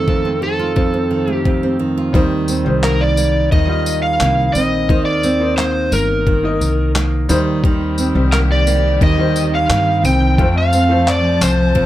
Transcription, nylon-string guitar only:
0, 0, Header, 1, 2, 480
1, 0, Start_track
1, 0, Tempo, 686499
1, 1499, Time_signature, 4, 2, 24, 8
1, 8291, End_track
2, 0, Start_track
2, 0, Title_t, "Nylon-string guitar"
2, 0, Program_c, 0, 24
2, 0, Note_on_c, 0, 51, 66
2, 0, Note_on_c, 0, 57, 47
2, 0, Note_on_c, 0, 60, 50
2, 54, Note_on_c, 0, 41, 58
2, 172, Note_off_c, 0, 60, 0
2, 175, Note_on_c, 0, 60, 52
2, 290, Note_off_c, 0, 51, 0
2, 293, Note_on_c, 0, 51, 53
2, 416, Note_on_c, 0, 65, 51
2, 523, Note_off_c, 0, 41, 0
2, 531, Note_on_c, 0, 41, 69
2, 653, Note_off_c, 0, 60, 0
2, 655, Note_on_c, 0, 60, 51
2, 771, Note_off_c, 0, 51, 0
2, 774, Note_on_c, 0, 51, 58
2, 883, Note_off_c, 0, 57, 0
2, 892, Note_on_c, 0, 57, 53
2, 1008, Note_off_c, 0, 41, 0
2, 1016, Note_on_c, 0, 41, 66
2, 1138, Note_off_c, 0, 60, 0
2, 1141, Note_on_c, 0, 60, 52
2, 1252, Note_off_c, 0, 51, 0
2, 1255, Note_on_c, 0, 51, 60
2, 1373, Note_off_c, 0, 65, 0
2, 1381, Note_on_c, 0, 65, 55
2, 1500, Note_off_c, 0, 51, 0
2, 1503, Note_on_c, 0, 51, 86
2, 1544, Note_off_c, 0, 57, 0
2, 1546, Note_off_c, 0, 41, 0
2, 1548, Note_off_c, 0, 65, 0
2, 1739, Note_off_c, 0, 60, 0
2, 1742, Note_on_c, 0, 60, 60
2, 1981, Note_on_c, 0, 58, 54
2, 2215, Note_off_c, 0, 58, 0
2, 2218, Note_on_c, 0, 58, 50
2, 2460, Note_off_c, 0, 51, 0
2, 2462, Note_on_c, 0, 51, 79
2, 2939, Note_off_c, 0, 58, 0
2, 2942, Note_on_c, 0, 58, 64
2, 3185, Note_off_c, 0, 60, 0
2, 3187, Note_on_c, 0, 60, 58
2, 3423, Note_off_c, 0, 51, 0
2, 3425, Note_on_c, 0, 51, 81
2, 3663, Note_off_c, 0, 60, 0
2, 3665, Note_on_c, 0, 60, 64
2, 3686, Note_off_c, 0, 58, 0
2, 3903, Note_on_c, 0, 58, 67
2, 4138, Note_off_c, 0, 58, 0
2, 4140, Note_on_c, 0, 58, 62
2, 4380, Note_off_c, 0, 51, 0
2, 4383, Note_on_c, 0, 51, 72
2, 4858, Note_off_c, 0, 58, 0
2, 4861, Note_on_c, 0, 58, 65
2, 5100, Note_off_c, 0, 51, 0
2, 5103, Note_on_c, 0, 51, 78
2, 5339, Note_off_c, 0, 51, 0
2, 5347, Note_on_c, 0, 51, 80
2, 5582, Note_off_c, 0, 60, 0
2, 5585, Note_on_c, 0, 60, 67
2, 5606, Note_off_c, 0, 58, 0
2, 5825, Note_on_c, 0, 58, 58
2, 6054, Note_off_c, 0, 58, 0
2, 6063, Note_on_c, 0, 58, 58
2, 6295, Note_off_c, 0, 51, 0
2, 6304, Note_on_c, 0, 51, 88
2, 6774, Note_off_c, 0, 58, 0
2, 6782, Note_on_c, 0, 58, 67
2, 7020, Note_off_c, 0, 60, 0
2, 7023, Note_on_c, 0, 60, 57
2, 7265, Note_on_c, 0, 41, 75
2, 7309, Note_off_c, 0, 51, 0
2, 7309, Note_off_c, 0, 58, 0
2, 7504, Note_off_c, 0, 60, 0
2, 7507, Note_on_c, 0, 60, 66
2, 7745, Note_on_c, 0, 53, 66
2, 8207, Note_off_c, 0, 41, 0
2, 8216, Note_on_c, 0, 41, 85
2, 8291, Note_off_c, 0, 41, 0
2, 8291, Note_off_c, 0, 53, 0
2, 8291, Note_off_c, 0, 60, 0
2, 8291, End_track
0, 0, End_of_file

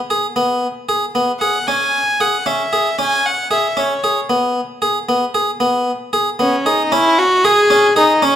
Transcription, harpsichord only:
0, 0, Header, 1, 2, 480
1, 0, Start_track
1, 0, Key_signature, 4, "minor"
1, 0, Tempo, 524476
1, 329, Time_signature, 5, 3, 24, 8
1, 7648, End_track
2, 0, Start_track
2, 0, Title_t, "Harpsichord"
2, 0, Program_c, 0, 6
2, 95, Note_on_c, 0, 68, 52
2, 227, Note_off_c, 0, 68, 0
2, 331, Note_on_c, 0, 59, 65
2, 597, Note_off_c, 0, 59, 0
2, 812, Note_on_c, 0, 68, 54
2, 945, Note_off_c, 0, 68, 0
2, 1054, Note_on_c, 0, 59, 55
2, 1188, Note_off_c, 0, 59, 0
2, 1293, Note_on_c, 0, 68, 49
2, 1428, Note_off_c, 0, 68, 0
2, 1538, Note_on_c, 0, 61, 59
2, 1805, Note_off_c, 0, 61, 0
2, 2017, Note_on_c, 0, 68, 55
2, 2151, Note_off_c, 0, 68, 0
2, 2253, Note_on_c, 0, 61, 57
2, 2387, Note_off_c, 0, 61, 0
2, 2497, Note_on_c, 0, 68, 51
2, 2629, Note_off_c, 0, 68, 0
2, 2734, Note_on_c, 0, 61, 65
2, 3001, Note_off_c, 0, 61, 0
2, 3210, Note_on_c, 0, 68, 59
2, 3345, Note_off_c, 0, 68, 0
2, 3450, Note_on_c, 0, 61, 60
2, 3585, Note_off_c, 0, 61, 0
2, 3695, Note_on_c, 0, 68, 54
2, 3828, Note_off_c, 0, 68, 0
2, 3931, Note_on_c, 0, 59, 63
2, 4198, Note_off_c, 0, 59, 0
2, 4411, Note_on_c, 0, 68, 60
2, 4544, Note_off_c, 0, 68, 0
2, 4655, Note_on_c, 0, 59, 59
2, 4787, Note_off_c, 0, 59, 0
2, 4892, Note_on_c, 0, 68, 51
2, 5025, Note_off_c, 0, 68, 0
2, 5128, Note_on_c, 0, 59, 66
2, 5396, Note_off_c, 0, 59, 0
2, 5611, Note_on_c, 0, 68, 57
2, 5746, Note_off_c, 0, 68, 0
2, 5852, Note_on_c, 0, 59, 57
2, 5986, Note_off_c, 0, 59, 0
2, 6096, Note_on_c, 0, 68, 51
2, 6229, Note_off_c, 0, 68, 0
2, 6334, Note_on_c, 0, 61, 78
2, 6602, Note_off_c, 0, 61, 0
2, 6815, Note_on_c, 0, 68, 73
2, 6948, Note_off_c, 0, 68, 0
2, 7050, Note_on_c, 0, 61, 74
2, 7184, Note_off_c, 0, 61, 0
2, 7288, Note_on_c, 0, 68, 65
2, 7421, Note_off_c, 0, 68, 0
2, 7527, Note_on_c, 0, 61, 80
2, 7648, Note_off_c, 0, 61, 0
2, 7648, End_track
0, 0, End_of_file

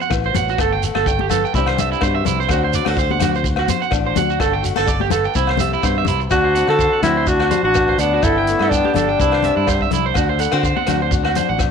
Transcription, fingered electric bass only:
0, 0, Header, 1, 2, 480
1, 0, Start_track
1, 0, Tempo, 478851
1, 581, Time_signature, 4, 2, 24, 8
1, 11737, End_track
2, 0, Start_track
2, 0, Title_t, "Fingered electric bass"
2, 0, Program_c, 0, 33
2, 112, Note_on_c, 0, 33, 93
2, 306, Note_off_c, 0, 33, 0
2, 349, Note_on_c, 0, 33, 75
2, 544, Note_off_c, 0, 33, 0
2, 586, Note_on_c, 0, 31, 84
2, 891, Note_off_c, 0, 31, 0
2, 953, Note_on_c, 0, 31, 72
2, 1440, Note_off_c, 0, 31, 0
2, 1546, Note_on_c, 0, 36, 93
2, 1940, Note_off_c, 0, 36, 0
2, 2024, Note_on_c, 0, 43, 96
2, 2221, Note_off_c, 0, 43, 0
2, 2265, Note_on_c, 0, 36, 78
2, 2461, Note_off_c, 0, 36, 0
2, 2494, Note_on_c, 0, 38, 92
2, 2803, Note_off_c, 0, 38, 0
2, 2880, Note_on_c, 0, 38, 74
2, 3669, Note_off_c, 0, 38, 0
2, 3924, Note_on_c, 0, 33, 96
2, 4127, Note_off_c, 0, 33, 0
2, 4180, Note_on_c, 0, 38, 77
2, 4376, Note_off_c, 0, 38, 0
2, 4410, Note_on_c, 0, 31, 84
2, 4718, Note_off_c, 0, 31, 0
2, 4795, Note_on_c, 0, 31, 73
2, 5277, Note_off_c, 0, 31, 0
2, 5368, Note_on_c, 0, 36, 85
2, 5766, Note_off_c, 0, 36, 0
2, 5851, Note_on_c, 0, 43, 94
2, 6049, Note_off_c, 0, 43, 0
2, 6082, Note_on_c, 0, 36, 77
2, 6284, Note_off_c, 0, 36, 0
2, 6329, Note_on_c, 0, 38, 84
2, 6637, Note_off_c, 0, 38, 0
2, 6694, Note_on_c, 0, 50, 68
2, 6896, Note_off_c, 0, 50, 0
2, 7041, Note_on_c, 0, 38, 93
2, 7551, Note_off_c, 0, 38, 0
2, 7646, Note_on_c, 0, 33, 76
2, 7941, Note_off_c, 0, 33, 0
2, 7999, Note_on_c, 0, 38, 86
2, 8202, Note_off_c, 0, 38, 0
2, 8244, Note_on_c, 0, 31, 84
2, 8555, Note_off_c, 0, 31, 0
2, 8619, Note_on_c, 0, 43, 70
2, 8819, Note_off_c, 0, 43, 0
2, 8962, Note_on_c, 0, 31, 90
2, 9165, Note_off_c, 0, 31, 0
2, 9217, Note_on_c, 0, 36, 83
2, 9523, Note_off_c, 0, 36, 0
2, 9588, Note_on_c, 0, 43, 81
2, 9876, Note_off_c, 0, 43, 0
2, 9939, Note_on_c, 0, 36, 82
2, 10136, Note_off_c, 0, 36, 0
2, 10180, Note_on_c, 0, 38, 82
2, 10486, Note_off_c, 0, 38, 0
2, 10552, Note_on_c, 0, 50, 75
2, 10749, Note_off_c, 0, 50, 0
2, 10906, Note_on_c, 0, 38, 89
2, 11410, Note_off_c, 0, 38, 0
2, 11520, Note_on_c, 0, 33, 77
2, 11737, Note_off_c, 0, 33, 0
2, 11737, End_track
0, 0, End_of_file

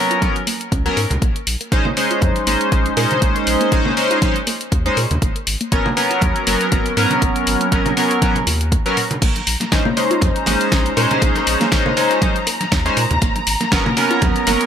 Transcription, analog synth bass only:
0, 0, Header, 1, 2, 480
1, 0, Start_track
1, 0, Key_signature, -5, "minor"
1, 0, Tempo, 500000
1, 1171, Time_signature, 4, 2, 24, 8
1, 14075, End_track
2, 0, Start_track
2, 0, Title_t, "Analog synth bass"
2, 0, Program_c, 0, 38
2, 690, Note_on_c, 0, 37, 97
2, 860, Note_off_c, 0, 37, 0
2, 931, Note_on_c, 0, 44, 80
2, 1020, Note_off_c, 0, 44, 0
2, 1063, Note_on_c, 0, 37, 80
2, 1135, Note_off_c, 0, 37, 0
2, 1170, Note_on_c, 0, 34, 97
2, 1260, Note_off_c, 0, 34, 0
2, 1410, Note_on_c, 0, 34, 79
2, 1500, Note_off_c, 0, 34, 0
2, 1650, Note_on_c, 0, 34, 77
2, 1739, Note_off_c, 0, 34, 0
2, 2130, Note_on_c, 0, 41, 94
2, 2220, Note_off_c, 0, 41, 0
2, 2370, Note_on_c, 0, 32, 82
2, 2460, Note_off_c, 0, 32, 0
2, 2610, Note_on_c, 0, 34, 78
2, 2780, Note_off_c, 0, 34, 0
2, 2850, Note_on_c, 0, 46, 101
2, 2940, Note_off_c, 0, 46, 0
2, 3091, Note_on_c, 0, 34, 100
2, 3180, Note_off_c, 0, 34, 0
2, 3331, Note_on_c, 0, 34, 81
2, 3420, Note_off_c, 0, 34, 0
2, 3571, Note_on_c, 0, 34, 76
2, 3660, Note_off_c, 0, 34, 0
2, 4531, Note_on_c, 0, 39, 99
2, 4700, Note_off_c, 0, 39, 0
2, 4771, Note_on_c, 0, 46, 76
2, 4860, Note_off_c, 0, 46, 0
2, 4905, Note_on_c, 0, 39, 83
2, 4976, Note_off_c, 0, 39, 0
2, 5011, Note_on_c, 0, 32, 98
2, 5100, Note_off_c, 0, 32, 0
2, 5252, Note_on_c, 0, 32, 79
2, 5340, Note_off_c, 0, 32, 0
2, 5491, Note_on_c, 0, 32, 80
2, 5580, Note_off_c, 0, 32, 0
2, 5971, Note_on_c, 0, 39, 99
2, 6060, Note_off_c, 0, 39, 0
2, 6211, Note_on_c, 0, 30, 86
2, 6300, Note_off_c, 0, 30, 0
2, 6450, Note_on_c, 0, 32, 77
2, 6620, Note_off_c, 0, 32, 0
2, 6691, Note_on_c, 0, 44, 99
2, 6780, Note_off_c, 0, 44, 0
2, 6931, Note_on_c, 0, 32, 100
2, 7020, Note_off_c, 0, 32, 0
2, 7170, Note_on_c, 0, 32, 81
2, 7260, Note_off_c, 0, 32, 0
2, 7410, Note_on_c, 0, 32, 79
2, 7499, Note_off_c, 0, 32, 0
2, 8130, Note_on_c, 0, 39, 90
2, 8433, Note_off_c, 0, 39, 0
2, 8850, Note_on_c, 0, 34, 97
2, 8940, Note_off_c, 0, 34, 0
2, 9091, Note_on_c, 0, 34, 80
2, 9180, Note_off_c, 0, 34, 0
2, 9330, Note_on_c, 0, 34, 73
2, 9420, Note_off_c, 0, 34, 0
2, 9810, Note_on_c, 0, 41, 90
2, 9899, Note_off_c, 0, 41, 0
2, 10052, Note_on_c, 0, 32, 88
2, 10140, Note_off_c, 0, 32, 0
2, 10290, Note_on_c, 0, 34, 80
2, 10460, Note_off_c, 0, 34, 0
2, 10532, Note_on_c, 0, 46, 99
2, 10620, Note_off_c, 0, 46, 0
2, 10770, Note_on_c, 0, 34, 103
2, 10859, Note_off_c, 0, 34, 0
2, 11010, Note_on_c, 0, 34, 78
2, 11100, Note_off_c, 0, 34, 0
2, 11249, Note_on_c, 0, 34, 83
2, 11339, Note_off_c, 0, 34, 0
2, 12210, Note_on_c, 0, 39, 97
2, 12380, Note_off_c, 0, 39, 0
2, 12450, Note_on_c, 0, 46, 81
2, 12539, Note_off_c, 0, 46, 0
2, 12583, Note_on_c, 0, 39, 89
2, 12655, Note_off_c, 0, 39, 0
2, 12690, Note_on_c, 0, 32, 98
2, 12779, Note_off_c, 0, 32, 0
2, 12930, Note_on_c, 0, 32, 78
2, 13019, Note_off_c, 0, 32, 0
2, 13170, Note_on_c, 0, 32, 74
2, 13259, Note_off_c, 0, 32, 0
2, 13650, Note_on_c, 0, 39, 91
2, 13740, Note_off_c, 0, 39, 0
2, 13889, Note_on_c, 0, 30, 87
2, 13979, Note_off_c, 0, 30, 0
2, 14075, End_track
0, 0, End_of_file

